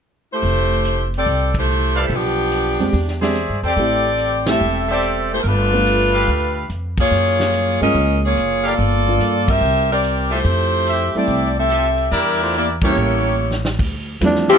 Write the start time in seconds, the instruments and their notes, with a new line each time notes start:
0.33 saxophone section A3 E4 G4 C5
0.43 upright bass F1, kick, open hi-hat
0.85 closed hi-hat
1.14 saxophone section C4 G4 A4, open hi-hat
1.18 saxophone section D5
1.26 upright bass C2, kick, open hi-hat
1.54 saxophone section G4, kick, ride
1.58 saxophone section A3 E4 C5
1.95 trumpet section A4 B4 D5 F5, open hi-hat
2.00 saxophone section G3 C4 E4 A4
2.10 upright bass B1, kick, open hi-hat
2.14 saxophone section F3 B3 D4 G4
2.52 closed hi-hat
2.79 upright bass F2, grand piano G#3 C4 D4 G4, open hi-hat
2.93 upright bass E2, kick, open hi-hat
3.08 snare
3.21 grand piano G#3 C4 D4 G4, trumpet section G#4 C5 D5 E5, snare
3.35 closed hi-hat
3.49 upright bass G2
3.63 upright bass E2, saxophone section C4 G4 A4 D5, trumpet section G4 A4 C5 G5, open hi-hat
3.77 upright bass A1, grand piano A3 C4 E4 G4, kick, open hi-hat
4.18 closed hi-hat
4.46 grand piano A3 C4 E4 G4, saxophone section C4 G4 A4 E5, snare, ride
4.61 upright bass E1
4.88 saxophone section C4 G4 A4 D5, trumpet section G4 A4 C5 E5
5.02 closed hi-hat
5.33 saxophone section A3 E4 G4 C5
5.41 upright bass G1, saxophone section A#4, kick, open hi-hat
5.47 saxophone section A3 D4 F4 B4
5.72 grand piano A3 B3 D4 F4
5.87 closed hi-hat
6.14 trumpet section G4 A4 B4 F5, open hi-hat
6.28 upright bass D2, kick, open hi-hat
6.70 upright bass F2, closed hi-hat
6.97 saxophone section A#3 F4 G#4 C#5, kick, ride
7.11 upright bass F#2
7.40 snare
7.53 closed hi-hat
7.81 upright bass G2, grand piano G#3 A#3 C#4 F4, saxophone section C#4 G#4 A#4 D#5, open hi-hat
7.95 upright bass C#2, kick, open hi-hat
8.26 saxophone section A#3 F4 G#4 C#5
8.36 upright bass F#1, closed hi-hat
8.64 saxophone section A#3 F4 A4 D5, trumpet section G4 A4 A#4 F5
8.78 upright bass G1, kick, open hi-hat
9.07 grand piano A#3 D4 F4 A4
9.18 upright bass G2, closed hi-hat
9.48 saxophone section C4 G4 A#4 E5, kick, ride
9.61 upright bass C2
9.92 saxophone section C4 G4 A#4 D5
10.04 closed hi-hat
10.31 saxophone section A3 E4 G4 C5, trumpet section F4 G4 A4 E5, open hi-hat
10.44 upright bass F2, kick, open hi-hat
10.87 trumpet section G4 A4 E5, closed hi-hat
11.15 grand piano G3 A3 C4 E4, saxophone section C4 G4 A4 D5, muted upright bass stroke, open hi-hat
11.27 upright bass C2, kick, open hi-hat
11.59 saxophone section C4 G4 A4 E5
11.69 trumpet section F4 G4 A4 E5, closed hi-hat
11.98 open hi-hat
12.12 upright bass E2, saxophone section G3 D4 E4 A#4, trumpet section E4 G4 A#4 D5, kick, open hi-hat
12.42 saxophone section A3 D4 F4 C5
12.54 saxophone section A#3 E4 D5, closed hi-hat
12.58 saxophone section G4
12.81 grand piano G3 A#3 C#4 E4, saxophone section A#3 E4 G4 C#5, trumpet section G4 A4 A#4 C#5, kick, ride
12.96 upright bass A1
13.51 snare
13.65 snare
13.79 upright bass D2, kick, crash
14.21 upright bass E2, grand piano F3 G3 A3 C4 E4, kick, hi-hat pedal, ride
14.25 tenor saxophone D4
14.35 snare
14.49 saxophone section F3 C4 E4 G4, tenor saxophone C4, snare, ride